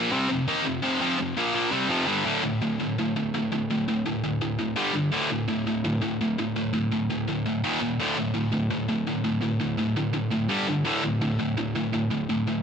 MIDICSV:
0, 0, Header, 1, 2, 480
1, 0, Start_track
1, 0, Tempo, 358209
1, 1111, Time_signature, 4, 2, 24, 8
1, 16917, End_track
2, 0, Start_track
2, 0, Title_t, "Distorted electric guitar"
2, 0, Program_c, 0, 30
2, 0, Note_on_c, 0, 46, 94
2, 0, Note_on_c, 0, 53, 92
2, 0, Note_on_c, 0, 58, 101
2, 144, Note_off_c, 0, 46, 0
2, 150, Note_off_c, 0, 53, 0
2, 151, Note_off_c, 0, 58, 0
2, 153, Note_on_c, 0, 48, 91
2, 156, Note_on_c, 0, 55, 94
2, 163, Note_on_c, 0, 60, 95
2, 386, Note_off_c, 0, 48, 0
2, 387, Note_off_c, 0, 55, 0
2, 391, Note_off_c, 0, 60, 0
2, 398, Note_on_c, 0, 41, 65
2, 403, Note_on_c, 0, 48, 82
2, 587, Note_off_c, 0, 41, 0
2, 589, Note_off_c, 0, 48, 0
2, 638, Note_on_c, 0, 51, 94
2, 647, Note_on_c, 0, 58, 89
2, 650, Note_on_c, 0, 63, 102
2, 867, Note_off_c, 0, 51, 0
2, 872, Note_off_c, 0, 58, 0
2, 872, Note_on_c, 0, 41, 66
2, 873, Note_off_c, 0, 63, 0
2, 878, Note_on_c, 0, 48, 74
2, 1063, Note_off_c, 0, 41, 0
2, 1066, Note_off_c, 0, 48, 0
2, 1101, Note_on_c, 0, 41, 93
2, 1110, Note_on_c, 0, 48, 97
2, 1114, Note_on_c, 0, 53, 98
2, 1326, Note_off_c, 0, 41, 0
2, 1337, Note_off_c, 0, 48, 0
2, 1343, Note_on_c, 0, 41, 88
2, 1345, Note_off_c, 0, 53, 0
2, 1353, Note_on_c, 0, 48, 98
2, 1360, Note_on_c, 0, 53, 101
2, 1573, Note_off_c, 0, 41, 0
2, 1580, Note_off_c, 0, 48, 0
2, 1587, Note_off_c, 0, 53, 0
2, 1589, Note_on_c, 0, 41, 58
2, 1596, Note_on_c, 0, 48, 64
2, 1780, Note_off_c, 0, 41, 0
2, 1784, Note_off_c, 0, 48, 0
2, 1831, Note_on_c, 0, 46, 85
2, 1842, Note_on_c, 0, 53, 98
2, 1845, Note_on_c, 0, 58, 102
2, 2042, Note_off_c, 0, 46, 0
2, 2050, Note_off_c, 0, 53, 0
2, 2058, Note_on_c, 0, 46, 96
2, 2059, Note_off_c, 0, 58, 0
2, 2066, Note_on_c, 0, 53, 92
2, 2075, Note_on_c, 0, 58, 105
2, 2284, Note_off_c, 0, 46, 0
2, 2288, Note_off_c, 0, 53, 0
2, 2289, Note_on_c, 0, 48, 95
2, 2293, Note_on_c, 0, 55, 104
2, 2298, Note_off_c, 0, 58, 0
2, 2303, Note_on_c, 0, 60, 96
2, 2527, Note_off_c, 0, 48, 0
2, 2532, Note_on_c, 0, 41, 93
2, 2533, Note_off_c, 0, 55, 0
2, 2538, Note_off_c, 0, 60, 0
2, 2543, Note_on_c, 0, 48, 98
2, 2545, Note_on_c, 0, 53, 104
2, 2758, Note_off_c, 0, 41, 0
2, 2764, Note_on_c, 0, 43, 85
2, 2770, Note_off_c, 0, 48, 0
2, 2770, Note_off_c, 0, 53, 0
2, 2775, Note_on_c, 0, 50, 101
2, 2776, Note_on_c, 0, 55, 96
2, 3008, Note_off_c, 0, 43, 0
2, 3013, Note_off_c, 0, 50, 0
2, 3014, Note_off_c, 0, 55, 0
2, 3017, Note_on_c, 0, 38, 85
2, 3021, Note_on_c, 0, 45, 83
2, 3027, Note_on_c, 0, 50, 94
2, 3243, Note_off_c, 0, 38, 0
2, 3245, Note_off_c, 0, 45, 0
2, 3252, Note_off_c, 0, 50, 0
2, 3259, Note_on_c, 0, 38, 69
2, 3261, Note_on_c, 0, 45, 76
2, 3479, Note_off_c, 0, 38, 0
2, 3480, Note_off_c, 0, 45, 0
2, 3502, Note_on_c, 0, 38, 68
2, 3506, Note_on_c, 0, 45, 75
2, 3720, Note_off_c, 0, 38, 0
2, 3722, Note_off_c, 0, 45, 0
2, 3746, Note_on_c, 0, 38, 68
2, 3746, Note_on_c, 0, 45, 69
2, 3962, Note_off_c, 0, 38, 0
2, 3962, Note_off_c, 0, 45, 0
2, 3998, Note_on_c, 0, 45, 84
2, 4000, Note_on_c, 0, 38, 71
2, 4208, Note_off_c, 0, 45, 0
2, 4209, Note_off_c, 0, 38, 0
2, 4235, Note_on_c, 0, 38, 69
2, 4237, Note_on_c, 0, 45, 79
2, 4447, Note_off_c, 0, 38, 0
2, 4448, Note_off_c, 0, 45, 0
2, 4474, Note_on_c, 0, 38, 77
2, 4490, Note_on_c, 0, 45, 87
2, 4686, Note_off_c, 0, 38, 0
2, 4694, Note_off_c, 0, 45, 0
2, 4714, Note_on_c, 0, 38, 73
2, 4716, Note_on_c, 0, 45, 81
2, 4926, Note_off_c, 0, 38, 0
2, 4927, Note_off_c, 0, 45, 0
2, 4957, Note_on_c, 0, 38, 63
2, 4964, Note_on_c, 0, 45, 81
2, 5168, Note_off_c, 0, 38, 0
2, 5171, Note_off_c, 0, 45, 0
2, 5198, Note_on_c, 0, 38, 67
2, 5203, Note_on_c, 0, 45, 77
2, 5409, Note_off_c, 0, 38, 0
2, 5411, Note_off_c, 0, 45, 0
2, 5435, Note_on_c, 0, 38, 70
2, 5437, Note_on_c, 0, 45, 78
2, 5647, Note_off_c, 0, 38, 0
2, 5648, Note_off_c, 0, 45, 0
2, 5675, Note_on_c, 0, 38, 76
2, 5684, Note_on_c, 0, 45, 71
2, 5888, Note_off_c, 0, 38, 0
2, 5892, Note_off_c, 0, 45, 0
2, 5911, Note_on_c, 0, 38, 71
2, 5913, Note_on_c, 0, 45, 77
2, 6125, Note_off_c, 0, 38, 0
2, 6127, Note_off_c, 0, 45, 0
2, 6143, Note_on_c, 0, 38, 74
2, 6152, Note_on_c, 0, 45, 69
2, 6362, Note_off_c, 0, 38, 0
2, 6366, Note_off_c, 0, 45, 0
2, 6375, Note_on_c, 0, 43, 90
2, 6378, Note_on_c, 0, 50, 101
2, 6389, Note_on_c, 0, 55, 103
2, 6596, Note_off_c, 0, 43, 0
2, 6604, Note_off_c, 0, 50, 0
2, 6612, Note_on_c, 0, 43, 66
2, 6614, Note_off_c, 0, 55, 0
2, 6620, Note_on_c, 0, 50, 83
2, 6836, Note_off_c, 0, 43, 0
2, 6840, Note_off_c, 0, 50, 0
2, 6857, Note_on_c, 0, 38, 86
2, 6864, Note_on_c, 0, 45, 81
2, 6868, Note_on_c, 0, 50, 89
2, 7089, Note_off_c, 0, 38, 0
2, 7092, Note_off_c, 0, 45, 0
2, 7094, Note_off_c, 0, 50, 0
2, 7107, Note_on_c, 0, 38, 70
2, 7111, Note_on_c, 0, 45, 72
2, 7324, Note_off_c, 0, 38, 0
2, 7326, Note_off_c, 0, 45, 0
2, 7344, Note_on_c, 0, 38, 65
2, 7350, Note_on_c, 0, 45, 81
2, 7563, Note_off_c, 0, 38, 0
2, 7566, Note_off_c, 0, 45, 0
2, 7593, Note_on_c, 0, 38, 64
2, 7599, Note_on_c, 0, 45, 69
2, 7808, Note_off_c, 0, 38, 0
2, 7810, Note_off_c, 0, 45, 0
2, 7830, Note_on_c, 0, 38, 72
2, 7833, Note_on_c, 0, 45, 83
2, 8043, Note_off_c, 0, 38, 0
2, 8048, Note_off_c, 0, 45, 0
2, 8059, Note_on_c, 0, 38, 79
2, 8069, Note_on_c, 0, 45, 75
2, 8281, Note_off_c, 0, 38, 0
2, 8285, Note_off_c, 0, 45, 0
2, 8319, Note_on_c, 0, 38, 78
2, 8319, Note_on_c, 0, 45, 76
2, 8530, Note_off_c, 0, 45, 0
2, 8531, Note_off_c, 0, 38, 0
2, 8553, Note_on_c, 0, 38, 67
2, 8557, Note_on_c, 0, 45, 80
2, 8768, Note_off_c, 0, 38, 0
2, 8770, Note_off_c, 0, 45, 0
2, 8786, Note_on_c, 0, 38, 73
2, 8791, Note_on_c, 0, 45, 82
2, 9001, Note_off_c, 0, 38, 0
2, 9007, Note_off_c, 0, 45, 0
2, 9017, Note_on_c, 0, 38, 68
2, 9023, Note_on_c, 0, 45, 78
2, 9240, Note_off_c, 0, 38, 0
2, 9243, Note_off_c, 0, 45, 0
2, 9266, Note_on_c, 0, 38, 62
2, 9273, Note_on_c, 0, 45, 76
2, 9485, Note_off_c, 0, 38, 0
2, 9488, Note_off_c, 0, 45, 0
2, 9513, Note_on_c, 0, 38, 72
2, 9519, Note_on_c, 0, 45, 76
2, 9728, Note_off_c, 0, 38, 0
2, 9731, Note_off_c, 0, 45, 0
2, 9751, Note_on_c, 0, 38, 76
2, 9759, Note_on_c, 0, 45, 83
2, 9967, Note_off_c, 0, 38, 0
2, 9971, Note_off_c, 0, 45, 0
2, 9994, Note_on_c, 0, 38, 65
2, 9995, Note_on_c, 0, 45, 80
2, 10209, Note_off_c, 0, 38, 0
2, 10209, Note_off_c, 0, 45, 0
2, 10234, Note_on_c, 0, 46, 87
2, 10236, Note_on_c, 0, 39, 91
2, 10241, Note_on_c, 0, 51, 93
2, 10448, Note_off_c, 0, 39, 0
2, 10453, Note_off_c, 0, 46, 0
2, 10462, Note_off_c, 0, 51, 0
2, 10464, Note_on_c, 0, 39, 67
2, 10469, Note_on_c, 0, 46, 85
2, 10684, Note_off_c, 0, 39, 0
2, 10687, Note_off_c, 0, 46, 0
2, 10714, Note_on_c, 0, 38, 83
2, 10721, Note_on_c, 0, 45, 94
2, 10731, Note_on_c, 0, 50, 99
2, 10930, Note_off_c, 0, 38, 0
2, 10937, Note_off_c, 0, 45, 0
2, 10946, Note_on_c, 0, 38, 66
2, 10947, Note_off_c, 0, 50, 0
2, 10953, Note_on_c, 0, 45, 71
2, 11160, Note_off_c, 0, 38, 0
2, 11168, Note_off_c, 0, 45, 0
2, 11176, Note_on_c, 0, 38, 65
2, 11186, Note_on_c, 0, 45, 73
2, 11400, Note_off_c, 0, 38, 0
2, 11405, Note_off_c, 0, 45, 0
2, 11415, Note_on_c, 0, 38, 70
2, 11423, Note_on_c, 0, 45, 68
2, 11640, Note_off_c, 0, 38, 0
2, 11643, Note_off_c, 0, 45, 0
2, 11662, Note_on_c, 0, 38, 75
2, 11674, Note_on_c, 0, 45, 81
2, 11883, Note_off_c, 0, 38, 0
2, 11889, Note_off_c, 0, 45, 0
2, 11906, Note_on_c, 0, 38, 74
2, 11906, Note_on_c, 0, 45, 76
2, 12125, Note_off_c, 0, 38, 0
2, 12125, Note_off_c, 0, 45, 0
2, 12149, Note_on_c, 0, 38, 70
2, 12154, Note_on_c, 0, 45, 85
2, 12367, Note_off_c, 0, 38, 0
2, 12369, Note_off_c, 0, 45, 0
2, 12381, Note_on_c, 0, 38, 72
2, 12387, Note_on_c, 0, 45, 82
2, 12603, Note_off_c, 0, 38, 0
2, 12606, Note_off_c, 0, 45, 0
2, 12619, Note_on_c, 0, 38, 70
2, 12629, Note_on_c, 0, 45, 74
2, 12842, Note_off_c, 0, 38, 0
2, 12847, Note_off_c, 0, 45, 0
2, 12874, Note_on_c, 0, 38, 75
2, 12875, Note_on_c, 0, 45, 79
2, 13089, Note_off_c, 0, 38, 0
2, 13090, Note_off_c, 0, 45, 0
2, 13109, Note_on_c, 0, 38, 62
2, 13115, Note_on_c, 0, 45, 71
2, 13327, Note_off_c, 0, 38, 0
2, 13330, Note_off_c, 0, 45, 0
2, 13354, Note_on_c, 0, 38, 75
2, 13357, Note_on_c, 0, 45, 76
2, 13566, Note_off_c, 0, 38, 0
2, 13571, Note_off_c, 0, 45, 0
2, 13582, Note_on_c, 0, 38, 71
2, 13585, Note_on_c, 0, 45, 87
2, 13803, Note_off_c, 0, 38, 0
2, 13805, Note_off_c, 0, 45, 0
2, 13822, Note_on_c, 0, 38, 76
2, 13828, Note_on_c, 0, 45, 75
2, 14043, Note_off_c, 0, 38, 0
2, 14046, Note_off_c, 0, 45, 0
2, 14061, Note_on_c, 0, 43, 86
2, 14068, Note_on_c, 0, 50, 96
2, 14070, Note_on_c, 0, 55, 109
2, 14292, Note_off_c, 0, 43, 0
2, 14296, Note_off_c, 0, 50, 0
2, 14297, Note_off_c, 0, 55, 0
2, 14316, Note_on_c, 0, 43, 68
2, 14320, Note_on_c, 0, 50, 78
2, 14530, Note_off_c, 0, 43, 0
2, 14532, Note_off_c, 0, 50, 0
2, 14536, Note_on_c, 0, 38, 87
2, 14539, Note_on_c, 0, 45, 100
2, 14556, Note_on_c, 0, 50, 100
2, 14764, Note_off_c, 0, 38, 0
2, 14772, Note_off_c, 0, 45, 0
2, 14780, Note_off_c, 0, 50, 0
2, 14780, Note_on_c, 0, 38, 70
2, 14790, Note_on_c, 0, 45, 76
2, 15003, Note_off_c, 0, 38, 0
2, 15007, Note_off_c, 0, 45, 0
2, 15026, Note_on_c, 0, 38, 78
2, 15028, Note_on_c, 0, 45, 73
2, 15246, Note_off_c, 0, 38, 0
2, 15247, Note_off_c, 0, 45, 0
2, 15264, Note_on_c, 0, 38, 68
2, 15277, Note_on_c, 0, 45, 83
2, 15485, Note_off_c, 0, 38, 0
2, 15491, Note_off_c, 0, 45, 0
2, 15507, Note_on_c, 0, 38, 77
2, 15510, Note_on_c, 0, 45, 86
2, 15726, Note_off_c, 0, 38, 0
2, 15728, Note_off_c, 0, 45, 0
2, 15753, Note_on_c, 0, 38, 71
2, 15758, Note_on_c, 0, 45, 77
2, 15969, Note_off_c, 0, 38, 0
2, 15971, Note_off_c, 0, 45, 0
2, 15994, Note_on_c, 0, 38, 69
2, 15997, Note_on_c, 0, 45, 77
2, 16209, Note_off_c, 0, 38, 0
2, 16211, Note_off_c, 0, 45, 0
2, 16226, Note_on_c, 0, 38, 76
2, 16228, Note_on_c, 0, 45, 83
2, 16446, Note_off_c, 0, 38, 0
2, 16447, Note_off_c, 0, 45, 0
2, 16472, Note_on_c, 0, 38, 71
2, 16477, Note_on_c, 0, 45, 79
2, 16689, Note_off_c, 0, 38, 0
2, 16691, Note_off_c, 0, 45, 0
2, 16708, Note_on_c, 0, 38, 63
2, 16714, Note_on_c, 0, 45, 72
2, 16917, Note_off_c, 0, 38, 0
2, 16917, Note_off_c, 0, 45, 0
2, 16917, End_track
0, 0, End_of_file